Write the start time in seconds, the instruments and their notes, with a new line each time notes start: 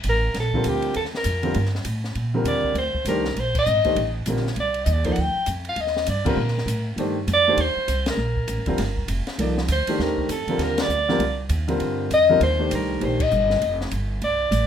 0.04 upright bass A1, hi-hat pedal, ride
0.09 soprano saxophone A#4
0.34 upright bass A#1, snare, ride
0.40 soprano saxophone A4
0.53 grand piano D3 G3 C4 F4 A#4, kick
0.64 upright bass D2, hi-hat pedal, ride
0.69 soprano saxophone G4
0.82 ride
0.94 upright bass D#2, soprano saxophone A4, ride
1.05 snare
1.14 soprano saxophone A#4, snare
1.24 upright bass F2, hi-hat pedal, ride
1.43 grand piano D3 G3 C4 F4 A#4, ride
1.54 upright bass G2, ride
1.65 snare
1.75 snare
1.85 upright bass A2, hi-hat pedal, ride
2.04 snare
2.15 upright bass A#2, ride
2.34 grand piano D3 G3 C4 F4 A#4
2.44 upright bass D#2, soprano saxophone D5, hi-hat pedal, ride
2.64 kick
2.74 upright bass D2, soprano saxophone C5, ride
2.95 muted upright bass stroke, kick
3.05 upright bass C2, grand piano D#3 A3 D4 G4 C5, soprano saxophone A#4, hi-hat pedal, ride
3.25 snare
3.36 upright bass A#1, soprano saxophone C5, ride
3.55 soprano saxophone D#5, kick, crash
3.66 upright bass G#1, hi-hat pedal
3.84 grand piano D#3 A3 D4 G4 C5, muted upright bass stroke, kick, ride
3.95 upright bass A1, ride
4.26 upright bass A#1, grand piano D3 G3 C4 F4 A#4, hi-hat pedal, ride
4.37 snare
4.47 snare
4.56 upright bass C2, ride
4.60 soprano saxophone D5
4.74 ride
4.84 upright bass D#2, soprano saxophone D#5, hi-hat pedal, ride
4.93 soprano saxophone D5
5.04 grand piano F3 A#3 D#4 A4 D5, soprano saxophone C5, kick, ride
5.13 soprano saxophone F#5, ride
5.18 upright bass D2, soprano saxophone G5
5.35 muted upright bass stroke
5.46 upright bass F2, hi-hat pedal, ride
5.65 ride
5.69 soprano saxophone F5
5.76 upright bass D#2, ride
5.81 soprano saxophone D#5
5.87 snare
5.96 snare
6.06 upright bass G2, soprano saxophone D5, hi-hat pedal, ride
6.25 grand piano D3 G3 C4 F4 A#4, kick, crash
6.29 soprano saxophone A#4
6.36 upright bass A#2
6.48 snare
6.58 snare
6.66 upright bass A2, hi-hat pedal, ride
6.96 upright bass G2, grand piano D#3 A3 D4 G4 C5, ride
7.27 upright bass F2, hi-hat pedal, ride
7.33 soprano saxophone D5
7.48 grand piano D#3 A3 D4 G4 C5
7.57 upright bass D#2, soprano saxophone C5, ride
7.76 muted upright bass stroke
7.88 upright bass C2, hi-hat pedal, ride
8.06 snare, ride
8.10 soprano saxophone A#4
8.17 upright bass A#1
8.37 kick
8.48 upright bass A1, hi-hat pedal, ride
8.57 upright bass G1
8.66 upright bass F1, grand piano D3 G3 C4 F4 A#4, kick, ride
8.78 upright bass G1, snare, ride
8.97 kick
9.08 upright bass F1, hi-hat pedal, ride
9.27 snare, ride
9.38 upright bass C2, grand piano F3 A#3 D#4 A4 D5, ride
9.58 snare
9.68 upright bass D2, hi-hat pedal, ride
9.72 soprano saxophone C5
9.87 grand piano D#3 A3 D4 G4 C5, muted upright bass stroke, ride
9.99 upright bass D#2, soprano saxophone A#4, snare
10.18 kick
10.29 upright bass F2, soprano saxophone A4, hi-hat pedal, ride
10.47 grand piano D3 G3 C4 F4 A#4, muted upright bass stroke, ride
10.58 upright bass D#2, snare, ride
10.63 soprano saxophone A#4
10.78 soprano saxophone D5, snare, ride
10.89 upright bass D2, hi-hat pedal
11.09 grand piano D3 G3 C4 F4 A#4, snare
11.19 upright bass C2, ride
11.49 upright bass D#2, hi-hat pedal, ride
11.68 grand piano D3 G3 C4 F4 A#4, ride
11.80 upright bass G2, ride
12.10 upright bass F2, soprano saxophone D#5, hi-hat pedal, ride
12.29 grand piano D3 G3 C4 F4 A#4
12.41 upright bass D#2, soprano saxophone C5, ride
12.59 grand piano D#3 A3 D4 G4 C5
12.71 upright bass C2, hi-hat pedal, ride
12.75 soprano saxophone A#4
13.00 upright bass A#1, grand piano D#3 A3 D4 G4 C5, soprano saxophone C5, ride
13.20 soprano saxophone D#5, kick, crash
13.31 upright bass G1, hi-hat pedal
13.50 snare
13.61 upright bass F1, ride
13.81 snare
13.91 upright bass G1, hi-hat pedal, ride
14.22 upright bass C2, soprano saxophone D5, ride
14.51 upright bass A1, hi-hat pedal, ride